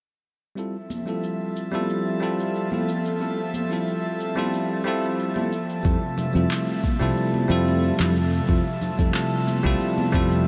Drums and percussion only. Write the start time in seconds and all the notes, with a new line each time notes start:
0.58 shaker
0.90 high conga, shaker
1.08 shaker
1.24 shaker
1.56 shaker
1.73 high conga, shaker
1.90 shaker
2.23 shaker
2.40 shaker
2.56 shaker
2.72 high conga
2.89 shaker
3.06 shaker
3.21 shaker
3.54 high conga, shaker
3.72 shaker
3.88 shaker
4.20 shaker
4.37 high conga, shaker
4.54 shaker
4.87 shaker
5.04 shaker
5.19 shaker
5.36 high conga
5.52 shaker
5.70 shaker
5.85 kick, shaker
6.18 low conga, shaker
6.36 shaker
6.51 clap, shaker
6.84 kick, high conga, shaker
7.01 shaker
7.17 shaker
7.34 high conga
7.50 shaker
7.67 shaker
7.83 shaker
8.00 clap, low conga
8.16 shaker
8.33 shaker
8.49 kick, shaker
8.81 low conga, shaker
8.99 kick, shaker
9.14 clap, shaker
9.47 high conga, shaker
9.65 kick, shaker
9.81 shaker
9.98 high conga
10.14 kick, shaker
10.31 shaker